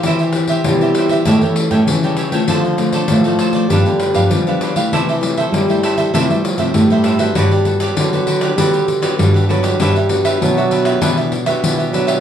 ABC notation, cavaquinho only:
X:1
M:4/4
L:1/16
Q:1/4=98
K:C
V:1 name="Cavaquinho"
[EGce] [Gce] z [Gce]2 [Gce] [EGce] [Gce] [GA^cg] [Acg] z [Acg]2 [Acg] [GAcg] [Acg] | [FAcd] [Acd] z [Acd]2 [Acd] [FAcd] [Acd] [DGBf] [GBf] z [GBf]2 [GBf] [DGBf] [GBf] | [EAce] [Ace] z [Ace]2 [Ace] [EAce] [Ace] [EAce] [Ace] z [Ace]2 [Ace] [EAce] [Ace] | [K:G] [FGBd] [GBd] z [GBd]2 [GBd] [FGBd] [GBd] [FGBd] [GBd] z [GBd]2 [GBd] [FGBd] [GBd] |
[DGBe] [GBe] z [GBe]2 [GBe] [DGBe] [GBe] [DGBe] [GBe] z [GBe]2 [GBe] [DGBe] [GBe] |]